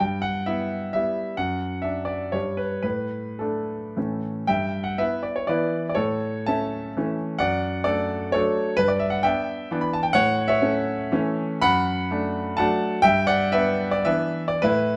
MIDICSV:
0, 0, Header, 1, 2, 480
1, 0, Start_track
1, 0, Tempo, 457666
1, 23, Time_signature, 3, 2, 24, 8
1, 1945, Tempo, 493016
1, 2425, Tempo, 499168
1, 2905, Tempo, 545951
1, 4345, Tempo, 485830
1, 5785, Tempo, 538117
1, 6265, Tempo, 481928
1, 6745, Tempo, 454890
1, 10585, Tempo, 507614
1, 11545, Tempo, 475436
1, 13465, Tempo, 530973
1, 13945, Tempo, 579710
1, 14703, End_track
2, 0, Start_track
2, 0, Title_t, "Grand piano"
2, 0, Program_c, 0, 0
2, 0, Note_on_c, 0, 79, 79
2, 7, Note_on_c, 0, 43, 59
2, 186, Control_c, 0, 64, 127
2, 228, Note_on_c, 0, 78, 81
2, 240, Note_off_c, 0, 79, 0
2, 477, Note_off_c, 0, 43, 0
2, 485, Note_on_c, 0, 76, 72
2, 488, Note_off_c, 0, 78, 0
2, 491, Note_on_c, 0, 59, 50
2, 496, Note_on_c, 0, 64, 51
2, 951, Note_off_c, 0, 59, 0
2, 954, Note_off_c, 0, 64, 0
2, 961, Note_off_c, 0, 76, 0
2, 976, Note_on_c, 0, 76, 75
2, 994, Note_on_c, 0, 55, 39
2, 996, Note_on_c, 0, 59, 36
2, 1002, Note_on_c, 0, 64, 45
2, 1007, Control_c, 0, 64, 0
2, 1418, Note_off_c, 0, 55, 0
2, 1419, Note_off_c, 0, 59, 0
2, 1422, Note_off_c, 0, 64, 0
2, 1440, Note_on_c, 0, 78, 75
2, 1443, Note_on_c, 0, 42, 53
2, 1451, Note_off_c, 0, 76, 0
2, 1627, Control_c, 0, 64, 127
2, 1906, Note_on_c, 0, 76, 62
2, 1921, Note_off_c, 0, 42, 0
2, 1933, Note_on_c, 0, 62, 48
2, 1934, Note_off_c, 0, 78, 0
2, 2136, Note_on_c, 0, 74, 65
2, 2168, Note_off_c, 0, 76, 0
2, 2382, Note_off_c, 0, 62, 0
2, 2400, Note_on_c, 0, 73, 62
2, 2401, Note_off_c, 0, 74, 0
2, 2409, Note_on_c, 0, 43, 45
2, 2414, Note_on_c, 0, 55, 29
2, 2418, Note_on_c, 0, 62, 32
2, 2439, Control_c, 0, 64, 0
2, 2641, Note_on_c, 0, 71, 61
2, 2644, Control_c, 0, 64, 127
2, 2648, Note_off_c, 0, 73, 0
2, 2861, Note_off_c, 0, 55, 0
2, 2863, Note_off_c, 0, 62, 0
2, 2870, Note_off_c, 0, 71, 0
2, 2882, Note_off_c, 0, 43, 0
2, 2884, Note_on_c, 0, 71, 72
2, 2893, Note_on_c, 0, 45, 44
2, 2914, Control_c, 0, 64, 0
2, 3082, Control_c, 0, 64, 127
2, 3374, Note_off_c, 0, 45, 0
2, 3382, Note_on_c, 0, 69, 47
2, 3385, Note_off_c, 0, 71, 0
2, 3401, Note_on_c, 0, 57, 36
2, 3401, Note_on_c, 0, 62, 39
2, 3855, Note_off_c, 0, 57, 0
2, 3855, Note_off_c, 0, 62, 0
2, 3888, Note_on_c, 0, 52, 29
2, 3890, Note_on_c, 0, 57, 27
2, 3891, Note_on_c, 0, 45, 40
2, 3900, Note_on_c, 0, 61, 31
2, 3901, Control_c, 0, 64, 0
2, 4083, Control_c, 0, 64, 127
2, 4118, Note_off_c, 0, 69, 0
2, 4311, Note_off_c, 0, 52, 0
2, 4312, Note_off_c, 0, 57, 0
2, 4317, Note_off_c, 0, 61, 0
2, 4334, Note_off_c, 0, 45, 0
2, 4336, Note_on_c, 0, 79, 87
2, 4344, Note_on_c, 0, 43, 57
2, 4346, Note_on_c, 0, 76, 61
2, 4354, Control_c, 0, 64, 0
2, 4511, Control_c, 0, 64, 127
2, 4685, Note_off_c, 0, 76, 0
2, 4693, Note_on_c, 0, 78, 63
2, 4705, Note_off_c, 0, 79, 0
2, 4822, Note_off_c, 0, 43, 0
2, 4829, Note_off_c, 0, 78, 0
2, 4837, Note_on_c, 0, 76, 84
2, 4840, Note_on_c, 0, 71, 57
2, 4847, Note_on_c, 0, 59, 46
2, 4853, Control_c, 0, 64, 0
2, 4853, Note_on_c, 0, 64, 43
2, 5073, Note_off_c, 0, 71, 0
2, 5079, Note_on_c, 0, 74, 57
2, 5089, Note_off_c, 0, 76, 0
2, 5205, Note_off_c, 0, 74, 0
2, 5207, Note_on_c, 0, 73, 56
2, 5293, Note_off_c, 0, 59, 0
2, 5296, Note_off_c, 0, 64, 0
2, 5321, Note_on_c, 0, 74, 72
2, 5326, Note_off_c, 0, 73, 0
2, 5334, Note_on_c, 0, 52, 49
2, 5340, Note_on_c, 0, 59, 52
2, 5342, Note_on_c, 0, 71, 58
2, 5347, Note_on_c, 0, 64, 52
2, 5698, Note_off_c, 0, 71, 0
2, 5714, Note_off_c, 0, 74, 0
2, 5738, Note_on_c, 0, 74, 60
2, 5749, Note_off_c, 0, 52, 0
2, 5752, Note_off_c, 0, 59, 0
2, 5756, Note_off_c, 0, 64, 0
2, 5789, Note_on_c, 0, 73, 73
2, 5795, Note_off_c, 0, 74, 0
2, 5796, Note_on_c, 0, 69, 64
2, 5808, Note_on_c, 0, 45, 62
2, 5982, Control_c, 0, 64, 127
2, 6236, Note_off_c, 0, 69, 0
2, 6251, Note_on_c, 0, 81, 88
2, 6262, Note_off_c, 0, 45, 0
2, 6264, Note_on_c, 0, 76, 56
2, 6265, Note_on_c, 0, 61, 48
2, 6266, Note_off_c, 0, 73, 0
2, 6268, Note_on_c, 0, 57, 42
2, 6705, Note_off_c, 0, 61, 0
2, 6707, Note_off_c, 0, 57, 0
2, 6751, Note_on_c, 0, 52, 49
2, 6751, Note_on_c, 0, 57, 50
2, 6752, Control_c, 0, 64, 0
2, 6760, Note_on_c, 0, 61, 51
2, 6937, Note_off_c, 0, 76, 0
2, 6972, Note_off_c, 0, 81, 0
2, 7169, Note_off_c, 0, 52, 0
2, 7169, Note_off_c, 0, 57, 0
2, 7174, Note_off_c, 0, 61, 0
2, 7192, Note_on_c, 0, 78, 92
2, 7207, Note_on_c, 0, 74, 74
2, 7208, Note_on_c, 0, 42, 55
2, 7407, Control_c, 0, 64, 127
2, 7657, Note_off_c, 0, 74, 0
2, 7673, Note_on_c, 0, 74, 92
2, 7679, Note_off_c, 0, 42, 0
2, 7684, Note_on_c, 0, 62, 49
2, 7684, Note_on_c, 0, 69, 64
2, 7685, Note_off_c, 0, 78, 0
2, 7689, Note_on_c, 0, 57, 48
2, 8156, Note_off_c, 0, 62, 0
2, 8158, Note_off_c, 0, 57, 0
2, 8162, Note_off_c, 0, 69, 0
2, 8181, Note_on_c, 0, 73, 84
2, 8192, Note_off_c, 0, 74, 0
2, 8198, Note_on_c, 0, 57, 49
2, 8199, Note_on_c, 0, 69, 67
2, 8205, Note_on_c, 0, 54, 52
2, 8212, Note_on_c, 0, 62, 59
2, 8213, Control_c, 0, 64, 0
2, 8616, Note_off_c, 0, 57, 0
2, 8620, Note_off_c, 0, 54, 0
2, 8623, Note_off_c, 0, 62, 0
2, 8627, Note_off_c, 0, 69, 0
2, 8649, Note_on_c, 0, 71, 108
2, 8650, Note_off_c, 0, 73, 0
2, 8671, Note_on_c, 0, 43, 61
2, 8768, Note_off_c, 0, 71, 0
2, 8770, Note_on_c, 0, 74, 71
2, 8822, Control_c, 0, 64, 127
2, 8887, Note_off_c, 0, 74, 0
2, 8890, Note_on_c, 0, 76, 70
2, 9003, Note_on_c, 0, 78, 72
2, 9008, Note_off_c, 0, 76, 0
2, 9121, Note_off_c, 0, 43, 0
2, 9128, Note_off_c, 0, 78, 0
2, 9138, Note_on_c, 0, 79, 97
2, 9146, Control_c, 0, 64, 0
2, 9152, Note_on_c, 0, 76, 77
2, 9159, Note_on_c, 0, 59, 51
2, 9159, Note_on_c, 0, 62, 58
2, 9601, Note_off_c, 0, 59, 0
2, 9601, Note_off_c, 0, 62, 0
2, 9644, Note_on_c, 0, 52, 57
2, 9651, Note_on_c, 0, 59, 58
2, 9655, Note_on_c, 0, 62, 65
2, 9718, Note_off_c, 0, 76, 0
2, 9751, Note_on_c, 0, 83, 68
2, 9753, Note_off_c, 0, 79, 0
2, 9868, Note_off_c, 0, 83, 0
2, 9882, Note_on_c, 0, 81, 78
2, 9982, Note_on_c, 0, 79, 74
2, 9990, Note_off_c, 0, 81, 0
2, 10062, Note_off_c, 0, 52, 0
2, 10066, Note_off_c, 0, 59, 0
2, 10067, Note_off_c, 0, 62, 0
2, 10089, Note_on_c, 0, 78, 117
2, 10096, Note_off_c, 0, 79, 0
2, 10106, Note_on_c, 0, 45, 75
2, 10107, Note_on_c, 0, 73, 86
2, 10291, Control_c, 0, 64, 127
2, 10434, Note_off_c, 0, 73, 0
2, 10450, Note_off_c, 0, 78, 0
2, 10454, Note_on_c, 0, 76, 94
2, 10471, Note_on_c, 0, 73, 67
2, 10575, Note_off_c, 0, 45, 0
2, 10601, Note_on_c, 0, 57, 56
2, 10603, Note_on_c, 0, 61, 60
2, 11027, Note_off_c, 0, 57, 0
2, 11028, Note_off_c, 0, 61, 0
2, 11069, Control_c, 0, 64, 0
2, 11073, Note_on_c, 0, 52, 60
2, 11076, Note_on_c, 0, 57, 67
2, 11083, Note_on_c, 0, 61, 72
2, 11514, Note_off_c, 0, 52, 0
2, 11514, Note_off_c, 0, 73, 0
2, 11516, Note_off_c, 0, 57, 0
2, 11519, Note_off_c, 0, 61, 0
2, 11544, Note_off_c, 0, 76, 0
2, 11544, Note_on_c, 0, 83, 124
2, 11550, Note_on_c, 0, 78, 105
2, 11556, Note_on_c, 0, 42, 71
2, 11764, Control_c, 0, 64, 127
2, 12024, Note_off_c, 0, 42, 0
2, 12043, Note_on_c, 0, 57, 58
2, 12050, Note_on_c, 0, 62, 62
2, 12486, Note_off_c, 0, 78, 0
2, 12489, Note_off_c, 0, 57, 0
2, 12493, Note_off_c, 0, 62, 0
2, 12505, Note_on_c, 0, 81, 98
2, 12519, Note_on_c, 0, 78, 76
2, 12524, Note_off_c, 0, 83, 0
2, 12525, Note_on_c, 0, 57, 66
2, 12526, Note_on_c, 0, 54, 62
2, 12536, Note_on_c, 0, 62, 70
2, 12539, Control_c, 0, 64, 0
2, 12936, Note_off_c, 0, 54, 0
2, 12936, Note_off_c, 0, 57, 0
2, 12942, Note_off_c, 0, 62, 0
2, 12942, Note_off_c, 0, 78, 0
2, 12964, Note_on_c, 0, 79, 122
2, 12966, Note_off_c, 0, 81, 0
2, 12977, Note_on_c, 0, 76, 95
2, 12986, Note_on_c, 0, 43, 80
2, 13169, Control_c, 0, 64, 127
2, 13193, Note_off_c, 0, 76, 0
2, 13203, Note_off_c, 0, 79, 0
2, 13213, Note_on_c, 0, 78, 105
2, 13214, Note_on_c, 0, 74, 83
2, 13448, Note_off_c, 0, 74, 0
2, 13454, Note_off_c, 0, 43, 0
2, 13465, Note_off_c, 0, 78, 0
2, 13467, Note_on_c, 0, 76, 99
2, 13472, Note_on_c, 0, 71, 77
2, 13486, Note_on_c, 0, 59, 52
2, 13490, Note_on_c, 0, 62, 57
2, 13803, Note_off_c, 0, 71, 0
2, 13823, Note_on_c, 0, 74, 83
2, 13825, Note_off_c, 0, 76, 0
2, 13919, Note_off_c, 0, 59, 0
2, 13921, Note_off_c, 0, 62, 0
2, 13943, Note_on_c, 0, 76, 96
2, 13944, Note_off_c, 0, 74, 0
2, 13950, Note_on_c, 0, 52, 63
2, 13954, Control_c, 0, 64, 0
2, 13955, Note_on_c, 0, 59, 63
2, 13955, Note_on_c, 0, 71, 69
2, 13959, Note_on_c, 0, 62, 59
2, 14271, Note_off_c, 0, 71, 0
2, 14290, Note_off_c, 0, 76, 0
2, 14301, Note_on_c, 0, 74, 84
2, 14381, Note_off_c, 0, 52, 0
2, 14384, Note_off_c, 0, 59, 0
2, 14386, Note_off_c, 0, 62, 0
2, 14417, Note_off_c, 0, 74, 0
2, 14417, Note_on_c, 0, 71, 101
2, 14430, Note_on_c, 0, 45, 70
2, 14434, Note_on_c, 0, 64, 85
2, 14648, Control_c, 0, 64, 127
2, 14703, Note_off_c, 0, 45, 0
2, 14703, Note_off_c, 0, 64, 0
2, 14703, Note_off_c, 0, 71, 0
2, 14703, End_track
0, 0, End_of_file